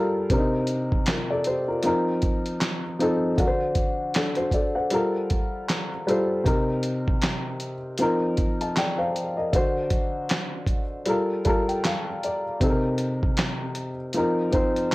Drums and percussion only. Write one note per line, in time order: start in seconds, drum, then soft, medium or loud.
0.30 kick loud
0.30 closed hi-hat medium
0.67 closed hi-hat medium
0.92 kick medium
1.06 snare loud
1.06 clap medium
1.06 closed hi-hat medium
1.44 closed hi-hat medium
1.83 closed hi-hat medium
2.22 kick medium
2.22 closed hi-hat medium
2.46 closed hi-hat soft
2.61 snare loud
2.61 clap medium
2.61 closed hi-hat medium
3.00 closed hi-hat medium
3.38 kick loud
3.38 closed hi-hat medium
3.75 kick medium
3.75 closed hi-hat medium
4.14 snare loud
4.14 clap medium
4.14 closed hi-hat medium
4.35 closed hi-hat soft
4.51 kick medium
4.51 closed hi-hat medium
4.90 closed hi-hat medium
5.30 kick medium
5.30 closed hi-hat medium
5.69 snare loud
5.69 clap medium
5.69 closed hi-hat medium
6.08 closed hi-hat medium
6.46 kick loud
6.46 closed hi-hat medium
6.83 closed hi-hat medium
7.08 kick medium
7.22 snare loud
7.22 clap medium
7.22 closed hi-hat medium
7.60 closed hi-hat medium
7.98 closed hi-hat medium
8.37 kick medium
8.37 closed hi-hat medium
8.61 closed hi-hat soft
8.77 snare loud
8.77 clap medium
8.77 closed hi-hat medium
9.16 closed hi-hat medium
9.53 kick loud
9.53 closed hi-hat medium
9.90 kick medium
9.90 closed hi-hat medium
10.29 snare loud
10.29 clap medium
10.29 closed hi-hat medium
10.67 kick medium
10.67 closed hi-hat medium
11.06 closed hi-hat medium
11.45 kick medium
11.45 closed hi-hat medium
11.69 closed hi-hat soft
11.85 snare loud
11.85 clap medium
11.85 closed hi-hat medium
12.23 closed hi-hat medium
12.61 kick loud
12.61 closed hi-hat medium
12.98 closed hi-hat medium
13.23 kick medium
13.37 snare loud
13.37 clap medium
13.37 closed hi-hat medium
13.75 closed hi-hat medium
14.13 closed hi-hat medium
14.53 kick medium
14.53 closed hi-hat medium
14.76 closed hi-hat soft